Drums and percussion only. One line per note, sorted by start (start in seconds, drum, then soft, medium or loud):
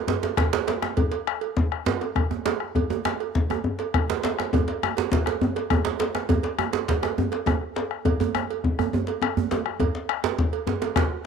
0.08 djembe slap soft
0.08 djembe slap loud
0.08 djembe bass medium
0.23 cowbell medium
0.23 djembe slap medium
0.37 bombo rim loud
0.37 bombo low loud
0.37 cowbell soft
0.37 djembe slap medium
0.37 djembe slap soft
0.37 djembe tone medium
0.53 djembe slap loud
0.67 bombo rim soft
0.67 cowbell medium
0.67 djembe slap medium
0.82 bombo rim medium
0.82 djembe slap medium
0.97 bombo rim soft
0.97 bombo low loud
0.97 cowbell medium
0.97 djembe tone medium
0.97 djembe bass medium
1.12 cowbell medium
1.12 djembe slap medium
1.27 bombo rim loud
1.41 cowbell soft
1.57 bombo rim soft
1.57 bombo low loud
1.57 djembe slap medium
1.57 djembe tone medium
1.72 bombo rim medium
1.86 djembe slap loud
1.86 djembe slap soft
1.86 djembe bass medium
2.01 cowbell soft
2.01 djembe slap soft
2.16 bombo rim medium
2.16 bombo low medium
2.16 cowbell soft
2.16 djembe slap soft
2.16 djembe tone medium
2.31 bombo rim soft
2.31 djembe tone medium
2.45 bombo rim soft
2.45 cowbell soft
2.45 djembe slap medium
2.45 djembe slap loud
2.60 bombo rim medium
2.75 bombo rim soft
2.75 bombo low medium
2.75 cowbell soft
2.75 djembe tone medium
2.75 djembe bass medium
2.90 cowbell medium
2.90 djembe slap soft
2.90 djembe tone medium
3.05 bombo rim medium
3.05 djembe slap medium
3.20 cowbell soft
3.35 bombo rim soft
3.35 bombo low loud
3.35 djembe slap medium
3.35 djembe tone medium
3.50 bombo rim medium
3.50 cowbell soft
3.50 djembe tone medium
3.64 djembe slap soft
3.64 djembe bass medium
3.79 cowbell soft
3.79 djembe slap medium
3.94 bombo rim loud
3.94 bombo low loud
3.94 cowbell soft
3.94 djembe slap soft
3.94 djembe tone medium
4.10 bombo rim soft
4.10 djembe slap loud
4.23 bombo rim soft
4.23 cowbell medium
4.23 djembe slap medium
4.39 bombo rim medium
4.39 djembe slap medium
4.53 bombo rim soft
4.53 bombo low medium
4.53 cowbell medium
4.53 djembe tone medium
4.53 djembe bass medium
4.68 cowbell medium
4.68 djembe slap medium
4.83 bombo rim loud
4.83 djembe tone medium
4.97 cowbell soft
4.97 djembe slap loud
5.12 bombo low loud
5.12 djembe slap medium
5.12 djembe tone medium
5.26 bombo rim medium
5.26 cowbell medium
5.26 djembe slap medium
5.41 djembe tone medium
5.41 djembe bass medium
5.56 bombo rim soft
5.56 cowbell medium
5.56 djembe slap medium
5.70 bombo rim loud
5.70 bombo low loud
5.70 cowbell soft
5.70 djembe tone medium
5.85 bombo rim soft
5.85 djembe slap medium
5.85 djembe slap soft
5.99 bombo rim soft
5.99 cowbell medium
5.99 djembe slap medium
6.15 bombo rim medium
6.15 djembe slap medium
6.29 bombo rim soft
6.29 bombo low medium
6.29 cowbell medium
6.29 djembe tone medium
6.29 djembe bass medium
6.43 cowbell medium
6.43 djembe slap medium
6.59 bombo rim loud
6.59 djembe tone medium
6.73 cowbell soft
6.73 djembe slap medium
6.88 bombo rim soft
6.88 bombo low medium
6.88 djembe slap medium
7.03 bombo rim medium
7.03 cowbell medium
7.03 djembe slap medium
7.18 djembe slap soft
7.18 djembe tone medium
7.18 djembe bass medium
7.32 cowbell medium
7.32 djembe slap medium
7.46 bombo rim medium
7.46 bombo low medium
7.46 cowbell soft
7.46 djembe slap soft
7.46 djembe tone medium
7.61 bombo rim soft
7.76 bombo rim soft
7.76 cowbell medium
7.76 djembe slap medium
7.91 bombo rim medium
8.05 bombo rim soft
8.05 bombo low medium
8.05 cowbell medium
8.05 djembe tone medium
8.05 djembe bass medium
8.20 cowbell medium
8.20 djembe slap medium
8.20 djembe bass medium
8.35 bombo rim loud
8.35 djembe tone medium
8.50 cowbell soft
8.64 bombo rim soft
8.64 bombo low medium
8.64 djembe tone medium
8.79 bombo rim medium
8.79 cowbell medium
8.79 djembe bass medium
8.93 djembe slap soft
8.93 djembe tone medium
8.93 djembe bass medium
9.07 cowbell medium
9.07 djembe slap medium
9.22 bombo rim loud
9.22 cowbell soft
9.22 djembe slap soft
9.22 djembe tone medium
9.37 bombo rim soft
9.37 djembe bass medium
9.51 bombo rim soft
9.51 cowbell medium
9.51 djembe slap medium
9.51 djembe tone medium
9.66 bombo rim medium
9.80 bombo rim soft
9.80 bombo low medium
9.80 cowbell medium
9.80 djembe tone medium
9.80 djembe bass medium
9.95 djembe slap medium
10.09 bombo rim loud
10.24 cowbell soft
10.24 djembe slap loud
10.39 bombo rim soft
10.39 bombo low loud
10.39 djembe slap medium
10.39 djembe tone medium
10.53 cowbell medium
10.67 djembe slap soft
10.67 djembe slap medium
10.67 djembe bass medium
10.82 cowbell medium
10.82 djembe slap medium
10.96 bombo rim loud
10.96 bombo low loud
10.96 cowbell medium
10.96 djembe slap soft
10.96 djembe slap loud
10.96 djembe tone medium
11.10 bombo rim soft